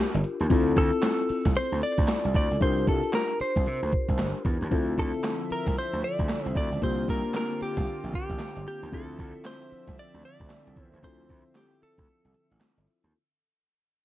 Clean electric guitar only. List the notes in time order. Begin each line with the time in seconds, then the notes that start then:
Already playing: G4
0.78 A4
1.57 C5
1.83 D5
2.36 D5
2.62 C5
2.89 A4
3.15 A#4
3.41 C5
4.99 A4
5.52 A#4
5.78 C5
6.04 D5
6.57 D5
6.83 C5
7.10 A#4
7.37 A#4
7.62 G4
8.15 G4
8.68 G4
8.94 A4
9.46 C5
9.99 D5
10.25 D5
10.84 C5
11.04 C5
11.57 G4
11.83 A4